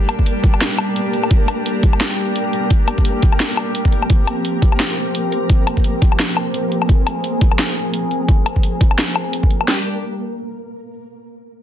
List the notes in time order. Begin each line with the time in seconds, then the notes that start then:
Already playing: G3 A#3 D4 G4 A#4
0.09 closed hi-hat, low woodblock
0.19 kick
0.26 closed hi-hat
0.44 kick, closed hi-hat
0.54 low woodblock
0.61 snare, closed hi-hat
0.78 low woodblock
0.96 closed hi-hat
1.13 closed hi-hat
1.23 low woodblock
1.31 kick, closed hi-hat
1.48 closed hi-hat, low woodblock
1.66 closed hi-hat
1.83 kick, closed hi-hat
1.93 low woodblock
2.00 snare, closed hi-hat
2.36 closed hi-hat
2.53 closed hi-hat
2.70 kick, closed hi-hat
2.88 closed hi-hat, low woodblock
2.98 kick
3.05 closed hi-hat
3.22 kick, closed hi-hat
3.32 low woodblock
3.40 snare, closed hi-hat
3.57 low woodblock
3.75 closed hi-hat
3.85 kick
3.92 closed hi-hat
4.02 low woodblock
4.10 F3 C4, kick, closed hi-hat
4.27 closed hi-hat, low woodblock
4.45 closed hi-hat
4.62 kick, closed hi-hat
4.72 low woodblock
4.80 snare, closed hi-hat
5.15 closed hi-hat
5.32 closed hi-hat
5.50 kick, closed hi-hat
5.67 closed hi-hat, low woodblock
5.77 kick
5.84 closed hi-hat
6.02 kick, closed hi-hat
6.12 low woodblock
6.19 snare, closed hi-hat
6.37 low woodblock
6.54 closed hi-hat
6.72 closed hi-hat
6.82 low woodblock
6.89 G#4, kick, closed hi-hat
7.07 closed hi-hat, low woodblock
7.24 closed hi-hat
7.41 kick, closed hi-hat
7.51 low woodblock
7.59 snare, closed hi-hat
7.94 closed hi-hat
8.11 closed hi-hat
8.29 kick, closed hi-hat
8.46 closed hi-hat, low woodblock
8.56 kick
8.63 closed hi-hat
8.81 kick, closed hi-hat
8.91 low woodblock
8.98 snare, closed hi-hat
9.16 low woodblock
9.33 closed hi-hat
9.43 kick
9.51 closed hi-hat
9.61 low woodblock
9.68 G3 D4 G4, snare, open hi-hat